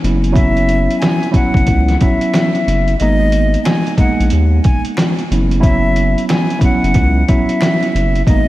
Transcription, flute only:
0, 0, Header, 1, 2, 480
1, 0, Start_track
1, 0, Tempo, 659341
1, 258, Time_signature, 4, 2, 24, 8
1, 6173, End_track
2, 0, Start_track
2, 0, Title_t, "Flute"
2, 0, Program_c, 0, 73
2, 251, Note_on_c, 0, 76, 108
2, 706, Note_off_c, 0, 76, 0
2, 722, Note_on_c, 0, 80, 80
2, 945, Note_off_c, 0, 80, 0
2, 984, Note_on_c, 0, 78, 89
2, 1432, Note_off_c, 0, 78, 0
2, 1461, Note_on_c, 0, 76, 83
2, 2151, Note_off_c, 0, 76, 0
2, 2173, Note_on_c, 0, 75, 111
2, 2627, Note_off_c, 0, 75, 0
2, 2650, Note_on_c, 0, 80, 80
2, 2870, Note_off_c, 0, 80, 0
2, 2904, Note_on_c, 0, 78, 88
2, 3117, Note_off_c, 0, 78, 0
2, 3372, Note_on_c, 0, 80, 68
2, 3509, Note_off_c, 0, 80, 0
2, 4099, Note_on_c, 0, 76, 109
2, 4550, Note_off_c, 0, 76, 0
2, 4587, Note_on_c, 0, 80, 85
2, 4799, Note_off_c, 0, 80, 0
2, 4835, Note_on_c, 0, 78, 93
2, 5278, Note_off_c, 0, 78, 0
2, 5298, Note_on_c, 0, 76, 85
2, 5989, Note_off_c, 0, 76, 0
2, 6013, Note_on_c, 0, 75, 113
2, 6173, Note_off_c, 0, 75, 0
2, 6173, End_track
0, 0, End_of_file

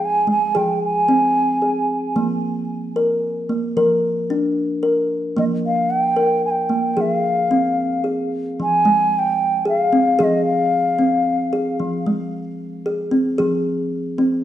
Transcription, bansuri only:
0, 0, Header, 1, 2, 480
1, 0, Start_track
1, 0, Tempo, 535236
1, 491, Time_signature, 3, 2, 24, 8
1, 12951, End_track
2, 0, Start_track
2, 0, Title_t, "Bansuri"
2, 0, Program_c, 0, 73
2, 44, Note_on_c, 0, 80, 86
2, 267, Note_off_c, 0, 80, 0
2, 279, Note_on_c, 0, 80, 69
2, 508, Note_on_c, 0, 79, 76
2, 522, Note_off_c, 0, 80, 0
2, 740, Note_off_c, 0, 79, 0
2, 751, Note_on_c, 0, 80, 82
2, 1668, Note_off_c, 0, 80, 0
2, 4828, Note_on_c, 0, 75, 69
2, 4882, Note_off_c, 0, 75, 0
2, 5079, Note_on_c, 0, 77, 78
2, 5296, Note_on_c, 0, 79, 82
2, 5309, Note_off_c, 0, 77, 0
2, 5781, Note_off_c, 0, 79, 0
2, 5791, Note_on_c, 0, 80, 71
2, 5833, Note_on_c, 0, 79, 77
2, 5842, Note_off_c, 0, 80, 0
2, 6221, Note_off_c, 0, 79, 0
2, 6221, Note_on_c, 0, 79, 58
2, 6285, Note_on_c, 0, 76, 73
2, 6298, Note_off_c, 0, 79, 0
2, 6392, Note_off_c, 0, 76, 0
2, 6392, Note_on_c, 0, 77, 73
2, 7235, Note_off_c, 0, 77, 0
2, 7739, Note_on_c, 0, 80, 88
2, 8238, Note_on_c, 0, 79, 81
2, 8252, Note_off_c, 0, 80, 0
2, 8684, Note_off_c, 0, 79, 0
2, 8689, Note_on_c, 0, 77, 84
2, 9179, Note_on_c, 0, 75, 73
2, 9193, Note_off_c, 0, 77, 0
2, 9370, Note_off_c, 0, 75, 0
2, 9375, Note_on_c, 0, 77, 82
2, 10299, Note_off_c, 0, 77, 0
2, 12951, End_track
0, 0, End_of_file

